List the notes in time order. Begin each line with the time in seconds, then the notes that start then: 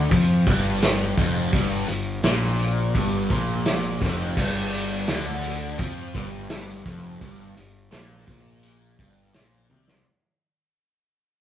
Already playing: D3
0.11 F2 F3, kick, open hi-hat
0.47 G1 G2, kick, open hi-hat
0.82 snare, open hi-hat
1.17 F1 F2, kick, open hi-hat
1.53 G1 G2, kick, open hi-hat
1.88 G1 G2, open hi-hat
2.24 A#1 A#2, snare, open hi-hat
2.60 open hi-hat
2.95 G1 G2, kick, open hi-hat
3.30 A#1 A#2, kick, open hi-hat
3.66 snare, open hi-hat
4.01 F1 F2, kick, snare, open hi-hat
4.37 G1 G2, kick, crash
4.72 open hi-hat
5.08 D2 D3, snare, open hi-hat
5.44 open hi-hat
5.79 F2 F3, kick, open hi-hat
6.15 G1 G2, kick, open hi-hat
6.50 snare, open hi-hat
6.85 F1 F2, kick, open hi-hat
7.21 G1 G2, kick, open hi-hat
7.56 G1 G2, open hi-hat
7.91 A#1 A#2, snare, open hi-hat
8.27 A#1 A#2, kick, open hi-hat
8.63 open hi-hat
8.98 G1 G2, kick, open hi-hat
9.34 A#1 A#2, snare, open hi-hat
9.70 C2 C3, high tom
9.88 snare